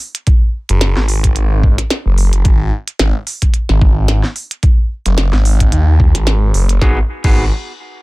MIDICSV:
0, 0, Header, 1, 4, 480
1, 0, Start_track
1, 0, Key_signature, 5, "minor"
1, 0, Tempo, 545455
1, 238, Time_signature, 4, 2, 24, 8
1, 7061, End_track
2, 0, Start_track
2, 0, Title_t, "Clean electric guitar"
2, 0, Program_c, 0, 27
2, 5996, Note_on_c, 0, 63, 80
2, 5999, Note_on_c, 0, 66, 80
2, 6003, Note_on_c, 0, 68, 99
2, 6007, Note_on_c, 0, 59, 85
2, 6143, Note_off_c, 0, 59, 0
2, 6143, Note_off_c, 0, 68, 0
2, 6144, Note_off_c, 0, 63, 0
2, 6144, Note_off_c, 0, 66, 0
2, 6374, Note_on_c, 0, 63, 77
2, 6375, Note_on_c, 0, 66, 78
2, 6377, Note_on_c, 0, 68, 93
2, 6378, Note_on_c, 0, 59, 84
2, 6547, Note_off_c, 0, 59, 0
2, 6547, Note_off_c, 0, 63, 0
2, 6547, Note_off_c, 0, 66, 0
2, 6547, Note_off_c, 0, 68, 0
2, 7061, End_track
3, 0, Start_track
3, 0, Title_t, "Detuned saw bass"
3, 0, Program_c, 1, 39
3, 615, Note_on_c, 1, 30, 94
3, 832, Note_off_c, 1, 30, 0
3, 855, Note_on_c, 1, 32, 94
3, 1552, Note_off_c, 1, 32, 0
3, 1810, Note_on_c, 1, 30, 97
3, 2140, Note_off_c, 1, 30, 0
3, 2158, Note_on_c, 1, 32, 96
3, 2381, Note_off_c, 1, 32, 0
3, 2637, Note_on_c, 1, 32, 95
3, 2751, Note_off_c, 1, 32, 0
3, 3252, Note_on_c, 1, 32, 98
3, 3711, Note_off_c, 1, 32, 0
3, 4453, Note_on_c, 1, 30, 93
3, 4671, Note_off_c, 1, 30, 0
3, 4687, Note_on_c, 1, 32, 98
3, 5018, Note_off_c, 1, 32, 0
3, 5035, Note_on_c, 1, 39, 96
3, 5390, Note_off_c, 1, 39, 0
3, 5410, Note_on_c, 1, 32, 94
3, 5740, Note_off_c, 1, 32, 0
3, 5757, Note_on_c, 1, 30, 97
3, 5981, Note_off_c, 1, 30, 0
3, 5999, Note_on_c, 1, 32, 90
3, 6144, Note_off_c, 1, 32, 0
3, 6375, Note_on_c, 1, 32, 96
3, 6597, Note_off_c, 1, 32, 0
3, 7061, End_track
4, 0, Start_track
4, 0, Title_t, "Drums"
4, 131, Note_on_c, 9, 42, 70
4, 219, Note_off_c, 9, 42, 0
4, 235, Note_on_c, 9, 42, 53
4, 240, Note_on_c, 9, 36, 120
4, 323, Note_off_c, 9, 42, 0
4, 328, Note_off_c, 9, 36, 0
4, 609, Note_on_c, 9, 42, 68
4, 697, Note_off_c, 9, 42, 0
4, 714, Note_on_c, 9, 38, 120
4, 714, Note_on_c, 9, 42, 53
4, 802, Note_off_c, 9, 38, 0
4, 802, Note_off_c, 9, 42, 0
4, 851, Note_on_c, 9, 40, 52
4, 939, Note_off_c, 9, 40, 0
4, 954, Note_on_c, 9, 46, 60
4, 1042, Note_off_c, 9, 46, 0
4, 1091, Note_on_c, 9, 42, 71
4, 1094, Note_on_c, 9, 36, 60
4, 1179, Note_off_c, 9, 42, 0
4, 1182, Note_off_c, 9, 36, 0
4, 1195, Note_on_c, 9, 42, 51
4, 1283, Note_off_c, 9, 42, 0
4, 1439, Note_on_c, 9, 36, 103
4, 1527, Note_off_c, 9, 36, 0
4, 1570, Note_on_c, 9, 38, 37
4, 1570, Note_on_c, 9, 42, 69
4, 1658, Note_off_c, 9, 38, 0
4, 1658, Note_off_c, 9, 42, 0
4, 1676, Note_on_c, 9, 38, 119
4, 1676, Note_on_c, 9, 42, 53
4, 1764, Note_off_c, 9, 38, 0
4, 1764, Note_off_c, 9, 42, 0
4, 1915, Note_on_c, 9, 46, 59
4, 2003, Note_off_c, 9, 46, 0
4, 2049, Note_on_c, 9, 42, 71
4, 2137, Note_off_c, 9, 42, 0
4, 2155, Note_on_c, 9, 42, 52
4, 2158, Note_on_c, 9, 36, 124
4, 2243, Note_off_c, 9, 42, 0
4, 2246, Note_off_c, 9, 36, 0
4, 2531, Note_on_c, 9, 42, 64
4, 2619, Note_off_c, 9, 42, 0
4, 2635, Note_on_c, 9, 38, 126
4, 2635, Note_on_c, 9, 42, 54
4, 2723, Note_off_c, 9, 38, 0
4, 2723, Note_off_c, 9, 42, 0
4, 2876, Note_on_c, 9, 46, 63
4, 2964, Note_off_c, 9, 46, 0
4, 3009, Note_on_c, 9, 42, 66
4, 3013, Note_on_c, 9, 36, 61
4, 3097, Note_off_c, 9, 42, 0
4, 3101, Note_off_c, 9, 36, 0
4, 3112, Note_on_c, 9, 42, 51
4, 3200, Note_off_c, 9, 42, 0
4, 3249, Note_on_c, 9, 38, 38
4, 3337, Note_off_c, 9, 38, 0
4, 3357, Note_on_c, 9, 36, 101
4, 3445, Note_off_c, 9, 36, 0
4, 3594, Note_on_c, 9, 38, 119
4, 3594, Note_on_c, 9, 42, 53
4, 3682, Note_off_c, 9, 38, 0
4, 3682, Note_off_c, 9, 42, 0
4, 3728, Note_on_c, 9, 40, 38
4, 3816, Note_off_c, 9, 40, 0
4, 3835, Note_on_c, 9, 46, 60
4, 3923, Note_off_c, 9, 46, 0
4, 3970, Note_on_c, 9, 42, 67
4, 4058, Note_off_c, 9, 42, 0
4, 4073, Note_on_c, 9, 42, 51
4, 4077, Note_on_c, 9, 36, 121
4, 4161, Note_off_c, 9, 42, 0
4, 4165, Note_off_c, 9, 36, 0
4, 4451, Note_on_c, 9, 42, 65
4, 4539, Note_off_c, 9, 42, 0
4, 4555, Note_on_c, 9, 38, 125
4, 4555, Note_on_c, 9, 42, 52
4, 4643, Note_off_c, 9, 38, 0
4, 4643, Note_off_c, 9, 42, 0
4, 4691, Note_on_c, 9, 40, 50
4, 4779, Note_off_c, 9, 40, 0
4, 4798, Note_on_c, 9, 46, 60
4, 4886, Note_off_c, 9, 46, 0
4, 4931, Note_on_c, 9, 42, 65
4, 4933, Note_on_c, 9, 36, 61
4, 5019, Note_off_c, 9, 42, 0
4, 5021, Note_off_c, 9, 36, 0
4, 5035, Note_on_c, 9, 42, 52
4, 5123, Note_off_c, 9, 42, 0
4, 5278, Note_on_c, 9, 36, 103
4, 5366, Note_off_c, 9, 36, 0
4, 5411, Note_on_c, 9, 38, 37
4, 5411, Note_on_c, 9, 42, 65
4, 5499, Note_off_c, 9, 38, 0
4, 5499, Note_off_c, 9, 42, 0
4, 5516, Note_on_c, 9, 38, 114
4, 5516, Note_on_c, 9, 42, 48
4, 5604, Note_off_c, 9, 38, 0
4, 5604, Note_off_c, 9, 42, 0
4, 5757, Note_on_c, 9, 46, 61
4, 5845, Note_off_c, 9, 46, 0
4, 5890, Note_on_c, 9, 42, 65
4, 5978, Note_off_c, 9, 42, 0
4, 5998, Note_on_c, 9, 38, 85
4, 5999, Note_on_c, 9, 36, 114
4, 6086, Note_off_c, 9, 38, 0
4, 6087, Note_off_c, 9, 36, 0
4, 6372, Note_on_c, 9, 49, 86
4, 6374, Note_on_c, 9, 36, 112
4, 6460, Note_off_c, 9, 49, 0
4, 6462, Note_off_c, 9, 36, 0
4, 7061, End_track
0, 0, End_of_file